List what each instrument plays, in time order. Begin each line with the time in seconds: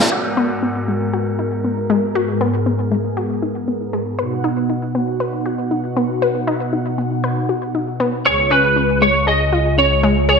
0.12 analog synth pad G#2 G#3 B3 F#4 A#4, synth arpeggio sound F#4, crash
0.37 synth arpeggio sound B3
0.63 synth arpeggio sound B3
0.88 synth arpeggio sound G#3
1.14 synth arpeggio sound F#4
1.39 synth arpeggio sound D#4
1.64 synth arpeggio sound B3
1.90 synth arpeggio sound G#3
2.15 synth arpeggio sound F#4, analog synth pad G#4
2.41 synth arpeggio sound B3
2.66 synth arpeggio sound B3
2.92 synth arpeggio sound G#3
3.17 synth arpeggio sound F#4
3.42 synth arpeggio sound D#4
3.68 synth arpeggio sound B3
3.93 synth arpeggio sound G#3
4.19 analog synth pad B2 D#4 F#4 F#5, synth arpeggio sound B4
4.44 synth arpeggio sound D#4
4.70 synth arpeggio sound D#4
4.95 synth arpeggio sound B3
5.20 synth arpeggio sound B4
5.46 synth arpeggio sound F#4
5.71 synth arpeggio sound D#4
5.97 synth arpeggio sound B3
6.22 synth arpeggio sound B4
6.47 synth arpeggio sound D#4
6.73 synth arpeggio sound D#4
6.98 synth arpeggio sound B3
7.24 synth arpeggio sound B4
7.49 synth arpeggio sound F#4
7.75 synth arpeggio sound D#4
8.00 synth arpeggio sound B3
8.25 analog synth pad C#2 C#3 G#3 F4 G#4, synth arpeggio sound G#4, lead electric guitar C#5
8.51 synth arpeggio sound C#4, lead electric guitar B4
8.76 synth arpeggio sound C#4
9.02 synth arpeggio sound G#3, lead electric guitar C#5
9.27 synth arpeggio sound G#4, lead electric guitar D#5
9.53 synth arpeggio sound F4
9.78 synth arpeggio sound C#4, lead electric guitar C#5
10.03 synth arpeggio sound G#3
10.29 synth arpeggio sound G#4, lead electric guitar C#5